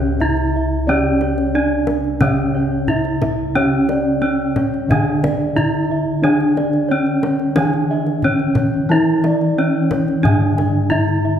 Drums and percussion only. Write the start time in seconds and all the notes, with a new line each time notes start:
0.20 kendang low
0.37 kendang slap
1.21 kendang high
1.38 kendang slap
1.87 kendang high
2.04 kendang slap
2.21 kendang high, kendang low
2.88 kendang low
3.05 kendang slap
3.22 kendang high, kendang low
3.89 kendang high
4.56 kendang high, kendang low
4.74 kendang slap
4.91 kendang low
5.24 kendang high, kendang low
5.58 kendang low
5.74 kendang slap
6.41 kendang slap
6.57 kendang high
6.73 kendang slap
7.06 kendang slap
7.23 kendang high
7.39 kendang slap
7.56 kendang high, kendang low
7.73 kendang slap
8.07 kendang slap
8.22 kendang low
8.39 kendang slap
8.55 kendang high, kendang low
8.74 kendang slap
9.24 kendang high
9.41 kendang slap
9.91 kendang high, kendang low
10.08 kendang slap
10.25 kendang low
10.58 kendang high, kendang low
10.92 kendang low
11.08 kendang slap